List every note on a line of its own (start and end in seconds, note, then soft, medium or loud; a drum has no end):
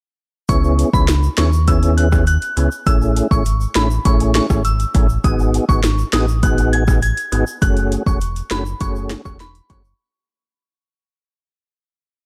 0.49 0.84 C#2 loud
0.49 0.90 B3 medium
0.49 0.90 C#4 medium
0.49 0.90 E4 medium
0.49 0.90 G#4 loud
0.49 0.58 C#6 loud
0.49 kick loud
0.49 closed hi-hat medium
0.49 shaker medium
0.64 shaker soft
0.79 closed hi-hat medium
0.79 shaker medium
0.93 1.29 C#2 loud
0.93 1.06 B3 medium
0.93 1.06 C#4 medium
0.93 1.07 E4 medium
0.93 1.07 G#4 medium
0.93 1.03 B5 medium
0.93 kick loud
0.93 shaker medium
1.08 snare loud
1.08 closed hi-hat medium
1.08 shaker medium
1.23 shaker medium
1.38 2.38 D#2 loud
1.38 1.51 B3 medium
1.38 1.51 C#4 medium
1.38 1.51 E4 medium
1.38 1.51 G#4 medium
1.38 1.47 C#6 medium
1.38 snare loud
1.38 closed hi-hat medium
1.38 shaker soft
1.53 shaker medium
1.67 2.09 B3 medium
1.67 2.09 C#4 medium
1.67 2.09 E4 medium
1.67 2.09 G#4 loud
1.67 1.77 E6 medium
1.67 kick loud
1.67 closed hi-hat medium
1.67 shaker medium
1.83 closed hi-hat medium
1.83 shaker medium
1.97 2.06 F#6 medium
1.97 closed hi-hat medium
2.12 2.25 B3 medium
2.12 2.25 C#4 medium
2.12 2.25 E4 medium
2.12 2.25 G#4 medium
2.12 kick medium
2.12 cross-stick loud
2.12 shaker medium
2.27 2.69 F#6 medium
2.27 closed hi-hat medium
2.27 shaker medium
2.42 closed hi-hat medium
2.42 shaker soft
2.57 2.69 C#2 medium
2.57 2.70 B3 medium
2.57 2.70 C#4 medium
2.57 2.70 E4 medium
2.57 2.70 G#4 medium
2.57 closed hi-hat medium
2.57 shaker soft
2.72 shaker medium
2.86 3.22 A1 loud
2.86 3.27 A3 medium
2.86 3.28 C#4 medium
2.86 3.28 E4 medium
2.86 3.28 G#4 loud
2.86 2.96 E6 loud
2.86 kick loud
2.86 closed hi-hat medium
2.86 shaker medium
3.02 shaker soft
3.16 closed hi-hat medium
3.16 shaker medium
3.31 3.66 G#1 medium
3.31 3.44 A3 medium
3.31 3.44 C#4 medium
3.31 3.44 E4 medium
3.31 3.44 G#4 medium
3.31 3.40 C#6 medium
3.31 kick loud
3.31 shaker medium
3.46 closed hi-hat medium
3.46 shaker medium
3.61 shaker medium
3.75 3.99 A1 loud
3.75 3.89 A3 medium
3.75 3.89 C#4 medium
3.75 3.89 E4 medium
3.75 3.89 G#4 medium
3.75 3.85 B5 medium
3.75 snare loud
3.75 closed hi-hat medium
3.75 shaker soft
3.91 shaker medium
4.05 4.41 A1 loud
4.05 4.46 A3 medium
4.05 4.46 C#4 medium
4.05 4.47 E4 medium
4.05 4.47 G#4 loud
4.05 4.14 C#6 medium
4.05 kick loud
4.05 closed hi-hat medium
4.05 high timbale medium
4.05 shaker medium
4.20 closed hi-hat medium
4.20 shaker medium
4.35 4.44 C#6 medium
4.35 snare loud
4.35 closed hi-hat medium
4.50 4.85 G#1 medium
4.50 4.63 A3 medium
4.50 4.63 C#4 medium
4.50 4.63 E4 medium
4.50 4.63 G#4 medium
4.50 kick loud
4.50 cross-stick loud
4.50 shaker medium
4.65 5.07 E6 medium
4.65 closed hi-hat medium
4.65 shaker medium
4.80 closed hi-hat medium
4.80 shaker medium
4.94 5.18 A1 loud
4.94 5.07 A3 medium
4.94 5.07 C#4 medium
4.94 5.08 E4 medium
4.94 5.08 G#4 medium
4.94 kick loud
4.94 closed hi-hat medium
4.94 high timbale medium
4.94 shaker soft
5.09 shaker medium
5.24 5.60 G#1 loud
5.24 5.65 B3 loud
5.24 5.65 D#4 medium
5.24 5.65 F#4 medium
5.24 5.65 G#4 loud
5.24 5.33 D#6 medium
5.24 kick loud
5.24 closed hi-hat medium
5.24 shaker medium
5.39 shaker soft
5.54 closed hi-hat medium
5.54 shaker medium
5.68 6.04 G#1 loud
5.68 5.82 B3 medium
5.68 5.82 D#4 medium
5.68 5.82 F#4 medium
5.68 5.82 G#4 medium
5.68 5.78 C#6 medium
5.68 kick loud
5.68 shaker medium
5.83 snare loud
5.83 closed hi-hat medium
5.83 shaker medium
5.98 shaker medium
6.13 7.13 A1 loud
6.13 6.26 B3 medium
6.13 6.26 D#4 medium
6.13 6.26 F#4 medium
6.13 6.26 G#4 medium
6.13 6.22 D#6 medium
6.13 snare loud
6.13 closed hi-hat medium
6.13 shaker medium
6.28 shaker medium
6.43 6.84 B3 medium
6.43 6.84 D#4 medium
6.43 6.84 F#4 medium
6.43 6.84 G#4 loud
6.43 6.52 F#6 medium
6.43 kick loud
6.43 closed hi-hat medium
6.43 shaker medium
6.58 closed hi-hat medium
6.58 shaker medium
6.73 6.82 G#6 medium
6.73 closed hi-hat medium
6.87 7.00 B3 medium
6.87 7.01 D#4 medium
6.87 7.01 F#4 medium
6.87 7.01 G#4 medium
6.87 kick loud
6.87 cross-stick loud
6.87 shaker medium
7.02 7.44 G#6 medium
7.02 closed hi-hat medium
7.02 shaker medium
7.17 closed hi-hat medium
7.17 shaker soft
7.32 7.44 G#1 medium
7.32 7.45 B3 medium
7.32 7.45 D#4 medium
7.32 7.45 F#4 medium
7.32 7.45 G#4 medium
7.32 closed hi-hat medium
7.32 shaker soft
7.47 shaker medium
7.62 7.97 F#1 loud
7.62 8.03 A3 medium
7.62 8.03 C#4 medium
7.62 8.03 F#4 medium
7.62 8.03 G#4 loud
7.62 7.71 F#6 loud
7.62 kick loud
7.62 closed hi-hat medium
7.62 shaker medium
7.77 closed hi-hat medium
7.77 shaker soft
7.92 closed hi-hat medium
7.92 shaker medium
8.06 8.42 E1 medium
8.06 8.19 A3 medium
8.06 8.19 C#4 medium
8.06 8.19 F#4 medium
8.06 8.20 G#4 medium
8.06 8.15 C#6 medium
8.06 kick loud
8.06 shaker medium
8.21 closed hi-hat medium
8.21 shaker medium
8.36 closed hi-hat medium
8.36 shaker medium
8.51 8.75 F#1 loud
8.51 8.64 A3 medium
8.51 8.64 C#4 medium
8.51 8.64 F#4 medium
8.51 8.64 G#4 medium
8.51 8.60 B5 medium
8.51 snare loud
8.51 closed hi-hat medium
8.51 shaker soft
8.66 shaker medium
8.80 9.16 F#1 loud
8.80 9.22 A3 medium
8.80 9.22 C#4 medium
8.80 9.22 F#4 medium
8.80 9.22 G#4 loud
8.80 8.90 C#6 medium
8.80 kick loud
8.80 closed hi-hat medium
8.80 high timbale medium
8.80 shaker medium
8.96 shaker medium
9.10 snare loud
9.10 closed hi-hat medium
9.10 shaker medium
9.25 9.61 E1 medium
9.25 9.38 A3 medium
9.25 9.38 C#4 medium
9.25 9.38 F#4 medium
9.25 9.38 G#4 medium
9.25 9.34 C#6 medium
9.25 kick loud
9.25 cross-stick medium
9.25 shaker medium
9.40 9.49 B5 medium
9.40 snare medium
9.40 closed hi-hat medium
9.40 shaker medium
9.55 closed hi-hat medium
9.55 shaker soft
9.70 9.94 F#1 loud
9.70 9.83 A3 medium
9.70 9.83 C#4 medium
9.70 9.83 F#4 medium
9.70 9.83 G#4 medium
9.70 9.79 C#6 medium
9.70 kick loud
9.70 closed hi-hat medium
9.70 high timbale medium
9.70 shaker soft
9.85 shaker medium